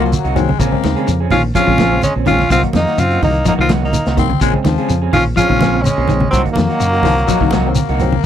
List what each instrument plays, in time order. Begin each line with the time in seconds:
Already playing: fingered electric bass C2, trumpet F#3, tenor saxophone A#3
0.00 tine electric piano F#3 A#3 F4
0.05 baritone saxophone F3
0.12 baritone saxophone F#3, closed hi-hat, high conga, shekere
0.24 fingered electric bass C2, clean electric guitar D#4 F#4, closed hi-hat
0.36 clean electric guitar D#3, tine electric piano F#3 A#3 C4, baritone saxophone G#3, closed hi-hat, high conga, low conga, shekere
0.49 clean electric guitar C#3, high conga
0.60 fingered electric bass A#1, clean electric guitar C#3 F3 C4 C#4 G#4, baritone saxophone A#3, kick, closed hi-hat, high conga, shekere
0.72 tine electric piano C#3 G#3 C4, kick
0.84 fingered electric bass D#2, clean electric guitar D#3, snare, closed hi-hat, high conga, shekere
0.96 clean electric guitar C4 C#4 G#4, closed hi-hat
1.07 fingered electric bass F2, clean electric guitar C#3, closed hi-hat, high conga, shekere
1.20 clean electric guitar C4 C#4 G#4
1.31 fingered electric bass A#1, clean electric guitar D#3, trumpet C#4, tenor saxophone F4, open hi-hat, high conga, low conga, shekere
1.55 clean electric guitar F3 C4 C#4 G#4, trumpet C#4, tenor saxophone F4, kick, closed hi-hat, high conga, low conga, shekere
1.67 fingered electric bass A#1, tine electric piano C#3 G#3 C4, clean electric guitar F3, kick
1.78 clean electric guitar F3 C4 C#4 G#4, kick, snare, closed hi-hat, high conga, shekere
1.92 tine electric piano C#3 G#3 C4
2.02 trumpet G#3, tenor saxophone C#4, closed hi-hat, high conga, shekere
2.15 fingered electric bass A#1, clean electric guitar C4 C#4, muted clean electric guitar stroke
2.26 tine electric piano C#3 G#3 C4, clean electric guitar D#3, trumpet C#4, tenor saxophone F4, snare, closed hi-hat, high conga, low conga, shekere
2.39 clean electric guitar C#3, snare, high conga
2.50 fingered electric bass C2, clean electric guitar C3 F#3 A#3 D#4 F#4, trumpet C4, tenor saxophone F4, kick, closed hi-hat, high conga, shekere
2.63 tine electric piano D#3 F#3 A#3, kick, closed hi-hat
2.73 fingered electric bass F2, clean electric guitar D#3, trumpet A#3, tenor saxophone D#4, snare, closed hi-hat, high conga, shekere
2.87 clean electric guitar A#3 D#4 F#4, snare, closed hi-hat
2.98 fingered electric bass F#2, clean electric guitar C#3, trumpet C4, tenor saxophone F4, closed hi-hat, high conga, shekere
3.11 clean electric guitar A#3 D#4 F#4, closed hi-hat
3.22 fingered electric bass C2, clean electric guitar D#3, trumpet A#3, tenor saxophone D#4, open hi-hat, high conga, low conga, shekere
3.34 closed hi-hat
3.45 clean electric guitar F3 F#3 A#3 D#4 F#4, trumpet A#3, tenor saxophone D#4, kick, closed hi-hat, high conga, low conga, shekere
3.58 fingered electric bass C2, tine electric piano D#3 F#3 A#3, clean electric guitar D#3, trumpet C4, tenor saxophone F4
3.69 clean electric guitar F3 F#3 A#3 D#4 F#4, snare, closed hi-hat, high conga, shekere
3.82 tine electric piano D#3 F#3 A#3, trumpet A#3, tenor saxophone D#4
3.93 closed hi-hat, high conga, shekere
4.06 fingered electric bass C2, clean electric guitar A#3 D#4 F#4, snare, closed hi-hat
4.16 tine electric piano D#3 F#3 A#3, clean electric guitar D#3, baritone saxophone C4, kick, closed hi-hat, high conga, low conga, shekere
4.30 clean electric guitar C#3, high conga
4.41 fingered electric bass A#1, clean electric guitar C#3 F3 C4 C#4 G#4, baritone saxophone G#3, kick, closed hi-hat, shekere
4.53 tine electric piano C#3 G#3 C4, kick
4.64 fingered electric bass D#2, clean electric guitar D#3, baritone saxophone F3, snare, closed hi-hat, high conga, shekere
4.78 clean electric guitar C4 C#4 G#4, closed hi-hat
4.89 fingered electric bass F2, clean electric guitar C#3, closed hi-hat, shekere
5.02 clean electric guitar C4 C#4 G#4
5.13 fingered electric bass A#1, clean electric guitar D#3, trumpet C#4, tenor saxophone F4, open hi-hat, high conga, low conga, shekere
5.36 clean electric guitar F3 C4 C#4 G#4, trumpet C#4, tenor saxophone F4, kick, closed hi-hat, high conga, shekere
5.48 fingered electric bass A#1, tine electric piano C#3 G#3 C4, clean electric guitar D#3, kick
5.59 clean electric guitar F3 C4 C#4 G#4, kick, snare, closed hi-hat, high conga, shekere
5.74 tine electric piano C#3 G#3 C4
5.82 trumpet G#3, tenor saxophone C#4, closed hi-hat, high conga, shekere
5.97 fingered electric bass A#1, clean electric guitar C4 C#4 G#4
6.08 tine electric piano C#3 G#3 C4, clean electric guitar D#3, closed hi-hat, high conga, low conga, shekere
6.20 clean electric guitar C#3, high conga
6.31 fingered electric bass C2, trumpet F#3, clean electric guitar F#3 A#3 D#4 F#4, tenor saxophone C4, muted clean electric guitar stroke, kick, closed hi-hat, high conga, shekere
6.45 tine electric piano D#3 F#3 A#3, kick, closed hi-hat
6.53 clean electric guitar D#3, trumpet F#3, tenor saxophone A#3, closed hi-hat, high conga, shekere
6.58 fingered electric bass F2, snare
6.69 clean electric guitar A#3 D#4 F#4, snare, closed hi-hat
6.79 fingered electric bass F#2, clean electric guitar C#3, closed hi-hat, high conga, shekere
6.93 clean electric guitar A#3 D#4 F#4, closed hi-hat
7.03 fingered electric bass C2, clean electric guitar D#3, baritone saxophone F3, snare, open hi-hat, high conga, low conga, shekere
7.18 closed hi-hat
7.27 clean electric guitar F3 F#3 A#3 D#4 F#4, baritone saxophone F#3, kick, closed hi-hat, shekere
7.41 fingered electric bass C2, tine electric piano D#3 F#3 A#3, clean electric guitar D#3, kick
7.51 clean electric guitar F3 F#3 A#3 D#4 F#4, kick, snare, closed hi-hat, high conga, shekere
7.66 tine electric piano D#3 F#3 C4, baritone saxophone C4
7.75 baritone saxophone A#3, closed hi-hat, high conga, shekere
7.88 fingered electric bass C2, clean electric guitar A#3 D#4 F#4, closed hi-hat
7.99 tine electric piano D#3 F#3 C4, closed hi-hat, low conga, shekere
8.12 clean electric guitar C#3, high conga